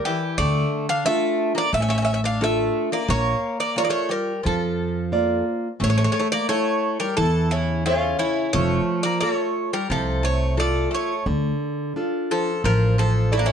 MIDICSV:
0, 0, Header, 1, 5, 480
1, 0, Start_track
1, 0, Tempo, 680272
1, 269, Time_signature, 4, 2, 24, 8
1, 9540, End_track
2, 0, Start_track
2, 0, Title_t, "Bouzouki"
2, 0, Program_c, 0, 25
2, 36, Note_on_c, 0, 67, 82
2, 267, Note_on_c, 0, 74, 96
2, 279, Note_off_c, 0, 67, 0
2, 602, Note_off_c, 0, 74, 0
2, 629, Note_on_c, 0, 77, 95
2, 740, Note_off_c, 0, 77, 0
2, 746, Note_on_c, 0, 76, 98
2, 1080, Note_off_c, 0, 76, 0
2, 1114, Note_on_c, 0, 74, 85
2, 1222, Note_off_c, 0, 74, 0
2, 1228, Note_on_c, 0, 76, 89
2, 1277, Note_off_c, 0, 76, 0
2, 1286, Note_on_c, 0, 76, 66
2, 1332, Note_off_c, 0, 76, 0
2, 1341, Note_on_c, 0, 76, 72
2, 1387, Note_off_c, 0, 76, 0
2, 1396, Note_on_c, 0, 76, 69
2, 1436, Note_off_c, 0, 76, 0
2, 1444, Note_on_c, 0, 76, 74
2, 1491, Note_off_c, 0, 76, 0
2, 1510, Note_on_c, 0, 76, 58
2, 1551, Note_off_c, 0, 76, 0
2, 1590, Note_on_c, 0, 77, 82
2, 1699, Note_off_c, 0, 77, 0
2, 1719, Note_on_c, 0, 76, 92
2, 2047, Note_off_c, 0, 76, 0
2, 2067, Note_on_c, 0, 74, 83
2, 2178, Note_off_c, 0, 74, 0
2, 2188, Note_on_c, 0, 73, 93
2, 2539, Note_off_c, 0, 73, 0
2, 2542, Note_on_c, 0, 74, 80
2, 2663, Note_off_c, 0, 74, 0
2, 2666, Note_on_c, 0, 73, 87
2, 2711, Note_off_c, 0, 73, 0
2, 2714, Note_on_c, 0, 74, 71
2, 2751, Note_off_c, 0, 74, 0
2, 2754, Note_on_c, 0, 73, 84
2, 2901, Note_on_c, 0, 70, 80
2, 2903, Note_off_c, 0, 73, 0
2, 3125, Note_off_c, 0, 70, 0
2, 3149, Note_on_c, 0, 69, 72
2, 3838, Note_off_c, 0, 69, 0
2, 4119, Note_on_c, 0, 73, 84
2, 4153, Note_off_c, 0, 73, 0
2, 4161, Note_on_c, 0, 73, 66
2, 4208, Note_off_c, 0, 73, 0
2, 4217, Note_on_c, 0, 73, 72
2, 4256, Note_off_c, 0, 73, 0
2, 4264, Note_on_c, 0, 73, 67
2, 4310, Note_off_c, 0, 73, 0
2, 4318, Note_on_c, 0, 73, 77
2, 4363, Note_off_c, 0, 73, 0
2, 4371, Note_on_c, 0, 73, 63
2, 4426, Note_off_c, 0, 73, 0
2, 4459, Note_on_c, 0, 74, 91
2, 4573, Note_off_c, 0, 74, 0
2, 4579, Note_on_c, 0, 73, 94
2, 4934, Note_off_c, 0, 73, 0
2, 4937, Note_on_c, 0, 70, 80
2, 5055, Note_off_c, 0, 70, 0
2, 5057, Note_on_c, 0, 69, 90
2, 5299, Note_on_c, 0, 64, 70
2, 5308, Note_off_c, 0, 69, 0
2, 5542, Note_off_c, 0, 64, 0
2, 5544, Note_on_c, 0, 65, 78
2, 5778, Note_off_c, 0, 65, 0
2, 5781, Note_on_c, 0, 64, 74
2, 6006, Note_off_c, 0, 64, 0
2, 6019, Note_on_c, 0, 73, 91
2, 6357, Note_off_c, 0, 73, 0
2, 6372, Note_on_c, 0, 74, 88
2, 6493, Note_off_c, 0, 74, 0
2, 6495, Note_on_c, 0, 74, 84
2, 6573, Note_off_c, 0, 74, 0
2, 6573, Note_on_c, 0, 73, 84
2, 6866, Note_off_c, 0, 73, 0
2, 6869, Note_on_c, 0, 70, 77
2, 6991, Note_off_c, 0, 70, 0
2, 6996, Note_on_c, 0, 69, 80
2, 7215, Note_off_c, 0, 69, 0
2, 7230, Note_on_c, 0, 73, 77
2, 7474, Note_off_c, 0, 73, 0
2, 7477, Note_on_c, 0, 74, 82
2, 7720, Note_off_c, 0, 74, 0
2, 7722, Note_on_c, 0, 73, 73
2, 7940, Note_off_c, 0, 73, 0
2, 8688, Note_on_c, 0, 69, 74
2, 8904, Note_off_c, 0, 69, 0
2, 8928, Note_on_c, 0, 70, 78
2, 9144, Note_off_c, 0, 70, 0
2, 9167, Note_on_c, 0, 69, 77
2, 9404, Note_on_c, 0, 64, 75
2, 9407, Note_off_c, 0, 69, 0
2, 9445, Note_off_c, 0, 64, 0
2, 9449, Note_on_c, 0, 62, 68
2, 9496, Note_off_c, 0, 62, 0
2, 9496, Note_on_c, 0, 64, 76
2, 9540, Note_off_c, 0, 64, 0
2, 9540, End_track
3, 0, Start_track
3, 0, Title_t, "Nylon-string guitar"
3, 0, Program_c, 1, 24
3, 0, Note_on_c, 1, 67, 50
3, 0, Note_on_c, 1, 70, 48
3, 0, Note_on_c, 1, 74, 56
3, 174, Note_off_c, 1, 67, 0
3, 176, Note_off_c, 1, 70, 0
3, 177, Note_off_c, 1, 74, 0
3, 277, Note_on_c, 1, 50, 69
3, 737, Note_off_c, 1, 50, 0
3, 754, Note_on_c, 1, 62, 45
3, 757, Note_on_c, 1, 65, 43
3, 759, Note_on_c, 1, 69, 53
3, 1134, Note_off_c, 1, 62, 0
3, 1136, Note_off_c, 1, 65, 0
3, 1137, Note_off_c, 1, 69, 0
3, 1230, Note_on_c, 1, 57, 64
3, 1693, Note_off_c, 1, 57, 0
3, 1703, Note_on_c, 1, 62, 46
3, 1708, Note_on_c, 1, 65, 44
3, 1712, Note_on_c, 1, 69, 54
3, 2088, Note_off_c, 1, 62, 0
3, 2089, Note_off_c, 1, 65, 0
3, 2093, Note_off_c, 1, 69, 0
3, 2187, Note_on_c, 1, 58, 65
3, 2651, Note_off_c, 1, 58, 0
3, 2663, Note_on_c, 1, 65, 46
3, 2664, Note_on_c, 1, 70, 41
3, 2668, Note_on_c, 1, 74, 52
3, 3047, Note_off_c, 1, 65, 0
3, 3047, Note_off_c, 1, 70, 0
3, 3050, Note_off_c, 1, 74, 0
3, 3140, Note_on_c, 1, 53, 62
3, 3607, Note_off_c, 1, 53, 0
3, 3614, Note_on_c, 1, 65, 45
3, 3618, Note_on_c, 1, 58, 45
3, 3619, Note_on_c, 1, 74, 53
3, 4001, Note_off_c, 1, 65, 0
3, 4004, Note_off_c, 1, 58, 0
3, 4004, Note_off_c, 1, 74, 0
3, 4091, Note_on_c, 1, 57, 66
3, 4563, Note_off_c, 1, 57, 0
3, 4578, Note_on_c, 1, 64, 46
3, 4582, Note_on_c, 1, 69, 45
3, 4585, Note_on_c, 1, 73, 50
3, 4965, Note_off_c, 1, 64, 0
3, 4966, Note_off_c, 1, 69, 0
3, 4969, Note_off_c, 1, 73, 0
3, 5063, Note_on_c, 1, 52, 63
3, 5529, Note_off_c, 1, 52, 0
3, 5548, Note_on_c, 1, 76, 46
3, 5553, Note_on_c, 1, 69, 46
3, 5556, Note_on_c, 1, 73, 53
3, 5931, Note_off_c, 1, 76, 0
3, 5934, Note_off_c, 1, 69, 0
3, 5936, Note_off_c, 1, 73, 0
3, 6023, Note_on_c, 1, 53, 71
3, 6490, Note_off_c, 1, 53, 0
3, 6508, Note_on_c, 1, 65, 46
3, 6508, Note_on_c, 1, 69, 45
3, 6892, Note_off_c, 1, 65, 0
3, 6892, Note_off_c, 1, 69, 0
3, 6985, Note_on_c, 1, 48, 67
3, 7452, Note_off_c, 1, 48, 0
3, 7464, Note_on_c, 1, 65, 46
3, 7469, Note_on_c, 1, 69, 43
3, 7851, Note_off_c, 1, 65, 0
3, 7852, Note_off_c, 1, 69, 0
3, 7947, Note_on_c, 1, 50, 70
3, 8414, Note_off_c, 1, 50, 0
3, 8440, Note_on_c, 1, 62, 45
3, 8443, Note_on_c, 1, 65, 44
3, 8447, Note_on_c, 1, 69, 54
3, 8821, Note_off_c, 1, 62, 0
3, 8823, Note_off_c, 1, 65, 0
3, 8825, Note_off_c, 1, 69, 0
3, 8918, Note_on_c, 1, 53, 65
3, 9382, Note_off_c, 1, 53, 0
3, 9397, Note_on_c, 1, 53, 43
3, 9398, Note_on_c, 1, 74, 48
3, 9400, Note_on_c, 1, 69, 56
3, 9540, Note_off_c, 1, 53, 0
3, 9540, Note_off_c, 1, 69, 0
3, 9540, Note_off_c, 1, 74, 0
3, 9540, End_track
4, 0, Start_track
4, 0, Title_t, "Bouzouki"
4, 0, Program_c, 2, 25
4, 44, Note_on_c, 2, 52, 71
4, 260, Note_off_c, 2, 52, 0
4, 275, Note_on_c, 2, 57, 79
4, 606, Note_off_c, 2, 57, 0
4, 630, Note_on_c, 2, 62, 72
4, 740, Note_off_c, 2, 62, 0
4, 745, Note_on_c, 2, 57, 85
4, 1080, Note_off_c, 2, 57, 0
4, 1092, Note_on_c, 2, 58, 74
4, 1210, Note_off_c, 2, 58, 0
4, 1218, Note_on_c, 2, 57, 72
4, 1270, Note_off_c, 2, 57, 0
4, 1272, Note_on_c, 2, 61, 52
4, 1322, Note_off_c, 2, 61, 0
4, 1330, Note_on_c, 2, 61, 68
4, 1366, Note_off_c, 2, 61, 0
4, 1375, Note_on_c, 2, 61, 52
4, 1419, Note_off_c, 2, 61, 0
4, 1427, Note_on_c, 2, 61, 57
4, 1482, Note_off_c, 2, 61, 0
4, 1502, Note_on_c, 2, 61, 54
4, 1547, Note_off_c, 2, 61, 0
4, 1580, Note_on_c, 2, 62, 75
4, 1694, Note_off_c, 2, 62, 0
4, 1701, Note_on_c, 2, 57, 80
4, 2037, Note_off_c, 2, 57, 0
4, 2062, Note_on_c, 2, 58, 66
4, 2168, Note_off_c, 2, 58, 0
4, 2176, Note_on_c, 2, 58, 78
4, 2514, Note_off_c, 2, 58, 0
4, 2539, Note_on_c, 2, 58, 67
4, 2646, Note_off_c, 2, 58, 0
4, 2654, Note_on_c, 2, 58, 66
4, 2697, Note_off_c, 2, 58, 0
4, 2705, Note_on_c, 2, 58, 59
4, 2747, Note_off_c, 2, 58, 0
4, 2749, Note_on_c, 2, 57, 75
4, 2886, Note_off_c, 2, 57, 0
4, 2886, Note_on_c, 2, 55, 63
4, 3117, Note_off_c, 2, 55, 0
4, 3128, Note_on_c, 2, 53, 58
4, 3827, Note_off_c, 2, 53, 0
4, 4092, Note_on_c, 2, 57, 78
4, 4147, Note_off_c, 2, 57, 0
4, 4157, Note_on_c, 2, 57, 57
4, 4206, Note_off_c, 2, 57, 0
4, 4217, Note_on_c, 2, 57, 60
4, 4255, Note_off_c, 2, 57, 0
4, 4264, Note_on_c, 2, 57, 65
4, 4313, Note_off_c, 2, 57, 0
4, 4323, Note_on_c, 2, 57, 72
4, 4368, Note_off_c, 2, 57, 0
4, 4376, Note_on_c, 2, 57, 58
4, 4423, Note_off_c, 2, 57, 0
4, 4468, Note_on_c, 2, 58, 74
4, 4577, Note_off_c, 2, 58, 0
4, 4584, Note_on_c, 2, 57, 80
4, 4919, Note_off_c, 2, 57, 0
4, 4938, Note_on_c, 2, 55, 68
4, 5052, Note_off_c, 2, 55, 0
4, 5058, Note_on_c, 2, 52, 71
4, 5284, Note_off_c, 2, 52, 0
4, 5308, Note_on_c, 2, 49, 62
4, 5529, Note_off_c, 2, 49, 0
4, 5548, Note_on_c, 2, 49, 68
4, 5768, Note_off_c, 2, 49, 0
4, 5777, Note_on_c, 2, 49, 70
4, 6004, Note_off_c, 2, 49, 0
4, 6026, Note_on_c, 2, 57, 71
4, 6361, Note_off_c, 2, 57, 0
4, 6386, Note_on_c, 2, 58, 75
4, 6497, Note_off_c, 2, 58, 0
4, 6512, Note_on_c, 2, 57, 70
4, 6844, Note_off_c, 2, 57, 0
4, 6866, Note_on_c, 2, 55, 62
4, 6978, Note_off_c, 2, 55, 0
4, 6984, Note_on_c, 2, 53, 74
4, 7209, Note_off_c, 2, 53, 0
4, 7219, Note_on_c, 2, 57, 71
4, 7447, Note_off_c, 2, 57, 0
4, 7461, Note_on_c, 2, 57, 72
4, 7688, Note_off_c, 2, 57, 0
4, 7697, Note_on_c, 2, 57, 67
4, 7926, Note_off_c, 2, 57, 0
4, 8686, Note_on_c, 2, 53, 60
4, 8903, Note_off_c, 2, 53, 0
4, 8921, Note_on_c, 2, 53, 69
4, 9140, Note_off_c, 2, 53, 0
4, 9160, Note_on_c, 2, 53, 68
4, 9380, Note_off_c, 2, 53, 0
4, 9401, Note_on_c, 2, 57, 67
4, 9436, Note_off_c, 2, 57, 0
4, 9439, Note_on_c, 2, 58, 62
4, 9487, Note_off_c, 2, 58, 0
4, 9497, Note_on_c, 2, 49, 67
4, 9540, Note_off_c, 2, 49, 0
4, 9540, End_track
5, 0, Start_track
5, 0, Title_t, "Upright bass"
5, 0, Program_c, 3, 32
5, 268, Note_on_c, 3, 38, 92
5, 435, Note_off_c, 3, 38, 0
5, 1221, Note_on_c, 3, 33, 86
5, 1893, Note_off_c, 3, 33, 0
5, 2178, Note_on_c, 3, 34, 97
5, 2348, Note_off_c, 3, 34, 0
5, 3144, Note_on_c, 3, 41, 87
5, 3816, Note_off_c, 3, 41, 0
5, 4103, Note_on_c, 3, 33, 93
5, 4271, Note_off_c, 3, 33, 0
5, 5067, Note_on_c, 3, 40, 88
5, 5739, Note_off_c, 3, 40, 0
5, 6029, Note_on_c, 3, 29, 94
5, 6196, Note_off_c, 3, 29, 0
5, 6984, Note_on_c, 3, 36, 84
5, 7659, Note_off_c, 3, 36, 0
5, 7945, Note_on_c, 3, 38, 94
5, 8115, Note_off_c, 3, 38, 0
5, 8919, Note_on_c, 3, 33, 89
5, 9540, Note_off_c, 3, 33, 0
5, 9540, End_track
0, 0, End_of_file